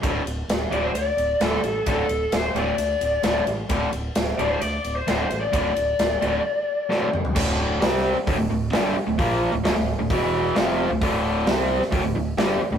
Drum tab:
CC |----------------|----------------|----------------|----------------|
RD |x-x-x-x-x-x-x-x-|x-x-x-x-x-x-x-x-|x-x-x-x-x-x-x-x-|x-x-x-x---------|
HH |----------------|----------------|----------------|----------------|
SD |----o-------o---|----oo------o---|----oo------o---|----o-------o---|
T1 |----------------|----------------|----------------|-------------o--|
T2 |----------------|----------------|----------------|--------------o-|
FT |----------------|----------------|----------------|---------------o|
BD |o---------------|o---------------|o---------------|o---------------|

CC |x---------------|----------------|----------------|
RD |----------------|----------------|----------------|
HH |----o---o---o---|o---o---o---o---|o---o---o---o---|
SD |----o-------o---|----o-------o---|----o--o----o---|
T1 |----------------|----------------|----------------|
T2 |----------------|----------------|----------------|
FT |----------------|----------------|----------------|
BD |o-------o-------|o-------o-------|o-------o-------|